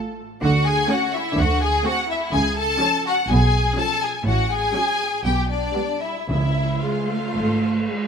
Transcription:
Already playing: A3 F4
0.41 D2 D3 F#4 F#5
0.66 G#4 G#5
0.89 A3 C#4 F#4 F#5
1.14 E4 E5
1.38 D2 D3 F#4 F#5
1.61 G#4 G#5
1.85 A3 C4 F#4 F#5
2.09 E4 E5
2.33 C#2 C#3 G#4 G#5
2.58 A4 A5
2.80 F3 C#4
3.06 F#4 F#5
3.29 B1 B2 G#4 G#5
3.76 F3 C#4 A4 A5
4.03 G#4 G#5
4.26 A1 A2 F#4 F#5
4.51 G#4 G#5
4.75 F#3 C#4
5.24 B1 B2 G4 G5
5.50 D4 D5
5.75 G3 B3
6.00 E4 E5
6.29 C#2 C#3 E4 E5
6.82 G#3 F4 F5
7.08 A3
7.36 G#1 G#2
7.89 G#3

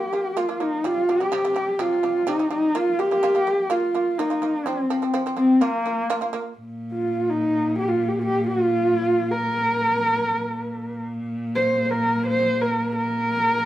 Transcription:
Already playing: G4
0.13 A#3 F4
0.37 A#3 F4
0.49 A#3 F4
0.60 A#3 D#4 F4
0.84 C3 G3 F4
1.09 C3 G3 G4
1.20 C3 G3
1.32 C3 G3
1.45 C3 G3
1.56 C3 G3
1.79 C3 G3 F4
2.03 C3 G3
2.27 C3 G3 D#4
2.39 C3 G3
2.50 C3 G3 D#4
2.75 A#3 F4
2.99 A#3 F4 G4
3.11 A#3 F4
3.23 A#3 F4
3.35 A#3 F4
3.47 A#3 F4
3.70 A#3 F4
3.94 A#3 F4
4.18 A#3 D#4 F4
4.30 A#3 F4
4.42 A#3 F4
4.66 F3 C4
4.90 F3 C4
5.02 F3 C4
5.14 F3 C4
5.26 F3 C4
5.37 F3 C4
5.61 A#3 F4
5.86 A#3 F4
6.10 A#3 F4
6.21 A#3 F4
6.33 A#3 F4
6.58 A#2
6.92 F4
7.29 D#4
7.78 G4
7.88 F4
8.08 G4
8.19 F4
8.24 G4
8.47 F4
9.31 A#4
10.37 A#2
11.55 C5
11.85 C5
11.91 A#4
12.26 C5
12.61 A#4
12.96 A#4

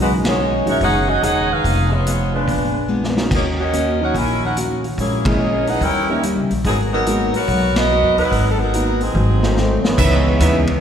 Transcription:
Already playing: B1 F#3 G#3 C#4 D#4
0.00 B2 D#3 G#3 C#4 D#4 F#4 B4
0.25 G#3 F#4 C#5, snare, ride
0.29 D#4
0.39 B2 D#3 G#3 C#4
0.66 A#1 F#3 G#3 C#4 D#4 F#4, open hi-hat
0.70 A#4 E5
0.81 F#1 B2 D#3 G#3 C#4 D#4 G#4 C#5 F#5, kick, open hi-hat
1.08 C#4 F#4 G#4 D#5
1.22 E1 B2 D#3 G#3 C#4 D#4 G#4 C#5 F#5, closed hi-hat
1.51 D#4 G#4 B4 F5
1.64 F1 F3 B3 D#4 G#4, kick, open hi-hat
1.91 B3 F4 G#4 C#5
2.06 F3 B3 D#4 G#4, closed hi-hat
2.34 G#3 D4 F4 B4
2.47 A#1 A#2 G#3 B3 D4, kick, open hi-hat
2.88 A#2 G#3 B3 D4
3.04 snare
3.16 F#3 A#3 C#4 D#4, snare
3.31 D#2 D#3 A#3 C#4 F#4, kick, crash
3.35 A#3 D#4 C#5
3.60 C#4 F#4 A#4 D#5
3.73 D#3 A#3 C#4 F#4, closed hi-hat
4.00 F#3 A#3 C#4 D#4 A#4 C#5 F#5
4.14 A#1 D#3 A#3 C#4 E4 F#4 A#4 C#5 G#5, kick, open hi-hat
4.45 D#4 A#4 C#5 F#5
4.57 D#3 A#3 C#4 F#4, closed hi-hat
4.84 open hi-hat
4.98 A#1 A#2 G#3 A#3 C#4 E4 G#4 C#5, kick, open hi-hat
5.25 G#3 A#3 C#4 E4 G#4 A#4 D#5, kick, ride
5.40 A#2 G#3 C#4 E4
5.67 D#4 G#4 B4 F#5, open hi-hat
5.81 D#2 D#3 G3 C#4 E4 A#4 C#5 G5, kick, open hi-hat
6.09 G3 A#3 C#4 D#4 G4 A#4 E5
6.23 D#3 G3 C#4 E4, closed hi-hat
6.36 C#2
6.50 A#1, open hi-hat
6.65 G#1 F#3 G#3 B3 D#4 F#4 G#4 A#4, kick, open hi-hat
6.93 F#3 B3 D#4 A#4
7.06 F#3 G#3 A#3 B3 D#4 F#4 A#4, closed hi-hat
7.33 A1 B3 F#4 A#4 C#5, open hi-hat
7.48 B1 G#3 B3 F#4 A#4, kick, open hi-hat
7.75 B3 F#4 A#4 D#5, snare, ride
7.91 G#3 B3 F#4 A#4
8.02 F#2
8.17 D#2 F#3 D#4 A#4 B4, open hi-hat
8.31 G#1 G#3 B3 F#4 A#4, kick, open hi-hat
8.50 A4
8.58 F#3 B3 D#4 A#4
8.74 F#3 G#3 A#3 B3 D#4 F#4 A#4, closed hi-hat
9.00 F#3 C4 D#4 G#4, open hi-hat
9.14 G#1 G#2 F#3 A3 C4, high tom
9.43 F#3 A3 C4 D#4, snare
9.57 G#2 D#3 F#3 A3 C4, snare
9.84 E3 G#3 B3 C#4, muted upright bass stroke, snare
9.97 C#2 C#3 E3 G#3 B3 C#4 D#4 B4 C#5 E5, kick, crash
10.01 D#4
10.39 D#2 C#3 E3 G#3 B3 C#4 D#4 B4 C#5 E5, kick, hi-hat pedal, ride
10.67 ride

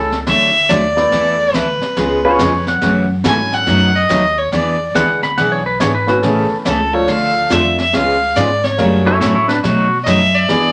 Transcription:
Already playing: C#2 A4
0.12 snare
0.27 D2 D3 F#3 A3 D4 F#4 E5, brush sweep, snare
0.69 D#2 D3 F#3 A3 D4 F#4 D5, snare, hi-hat pedal
0.96 A3 B3 E4 A4 D5, snare
1.11 E2 E3 B3 E4 A4, brush sweep, snare
1.54 D2 E3 B3 E4 A4 B4, snare, hi-hat pedal
1.81 muted upright bass stroke, snare
1.96 C#2 C#3 G#3 B3 F4 G#4, brush sweep, snare
2.24 B3 C#4 F4 G#4 B4 C#5
2.39 F2 C#3 G#3 B3 F4 G#4, snare, hi-hat pedal
2.67 F#5, snare
2.81 F#2 C#3 E3 A3 C#4 F#4, brush sweep, snare
3.24 G#2 C#3 E3 F#3 A3 C#4 E4 F#4 A4 G#5, snare, hi-hat pedal
3.52 F#5, snare
3.66 F#2 B2 F#3 A3 D#4 F#4, brush sweep, snare
3.95 D#5
4.09 D#2 B2 F#3 A3 D#4 F#4, snare, hi-hat pedal
4.38 C#5
4.52 E2 E3 B3 D4 G#4 D5, brush sweep, snare
4.95 D2 E3 G#3 B3 D4 E4 G#4 F#5, snare, hi-hat pedal
5.23 B5, snare
5.38 B1 E3 B3 D4 G#4 F#5, brush sweep, snare
5.52 C#5
5.66 B4
5.80 G#1 E3 B3 D4 G#4 C#5, snare, hi-hat pedal
5.95 B4
6.07 A3 B3 C#4 E4 F#4 B4, snare
6.23 A1 C#3 E3 A3 C#4 G#4 A4, brush sweep, snare
6.51 muted upright bass stroke
6.65 C#2 C#3 E3 A3 C#4 G#4 A4, snare, hi-hat pedal
6.93 F3 A3 D4 F4 A4 C#5
7.08 D2 D3 A3 D4 F4 A4 F5, brush sweep, snare
7.50 F2 D3 F3 A3 D4 F4 A4 E5, snare, hi-hat pedal
7.78 E5, snare
7.93 C#2 C#3 G#3 B3 F4 G#4 F5, brush sweep, snare
8.36 G#2 C#3 G#3 B3 F4 G#4 D5, snare, hi-hat pedal
8.64 C#5, snare
8.78 F#2 C#3 F#3 G3 A3 A#3 C#4 D4 F#4 G4 A#4, brush sweep, snare
9.06 F#3 A3 C#4 E4 F#4 A4 C#5
9.21 A2 C#3 F#3 A3 C#4 E4 F#4 C#5, snare, hi-hat pedal
9.35 E4 C#5
9.48 D4 B4, snare
9.63 B2 F#3 A3 D#4 F#4, brush sweep, snare
10.03 F#2 B2 F#3 A3 D#5 E5, snare, hi-hat pedal
10.08 D#4 F#4
10.34 D5
10.49 E2 E3 G#3 B3 D4 E4 G#4, brush sweep, snare

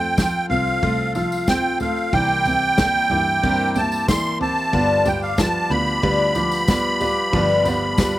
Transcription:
Already playing: F2 F3 A3 C4 F4 A4 G5
0.01 tambourine
0.17 F3 C4 F4 A4, kick, snare, floor tom, tambourine
0.50 C2 C4 F4 A4 F5, floor tom
0.67 tambourine
0.83 C2 F3 A3 C4 F4 A4, kick, floor tom
1.15 F3 C4 F4 A4 F5, floor tom, tambourine
1.32 tambourine
1.47 F3 C4 F4 A4 G5, kick, snare, floor tom, tambourine
1.80 A3 C4 F4 A4 F5, floor tom, tambourine
1.97 tambourine
2.13 C2 C3 E3 G3 A#3 E4 G4 G5, kick, floor tom
2.45 A#3 C4 E4 G4, floor tom, tambourine
2.63 tambourine
2.78 G3 A#3 E4 G4, kick, snare, floor tom, tambourine
3.10 G2 E3 A#3 E4 G4, floor tom
3.27 tambourine
3.43 G2 C3 G3 A#3 C4 E4 G4, kick, floor tom
3.75 A#3 E4 G4 A5, floor tom, tambourine
3.92 tambourine
4.08 E3 G3 A#3 E4 G4 C6, kick, snare, floor tom, tambourine
4.40 A#3 C4 E4 G4 A5, floor tom
4.57 tambourine
4.73 G1 G2 D3 F3 G3 B3 D4 F4 G4 B4 D5, kick, floor tom
5.05 F3 G3 B3 D4 F4 G4 B4 D5 G5, floor tom, tambourine
5.22 F5, tambourine
5.38 F3 G3 B3 D4 F4 G4 B4 D5 A5, kick, snare, floor tom, tambourine
5.70 D2 F3 G3 B3 D4 F4 G4 B4 D5 B5, floor tom
5.87 tambourine
6.02 D2 G2 D3 F3 G3 B3 D4 F4 G4 B4 D5, kick, floor tom
6.35 F3 G3 B3 D4 F4 G4 B4 D5, floor tom, tambourine
6.51 tambourine
6.68 F3 G3 B3 D4 F4 G4 B4 D5, kick, snare, floor tom, tambourine
7.00 F3 G3 B3 D4 F4 G4 B4 D5, floor tom, tambourine
7.17 tambourine
7.32 G1 G2 D3 F3 G3 B3 D4 F4 G4 B4 D5, kick, floor tom, tambourine
7.49 tambourine
7.65 F3 G3 B3 D4 F4 G4 B4 D5, floor tom, tambourine
7.98 F3 G3 B3 D4 F4 G4 B4 D5, kick, snare, floor tom, tambourine
8.15 tambourine

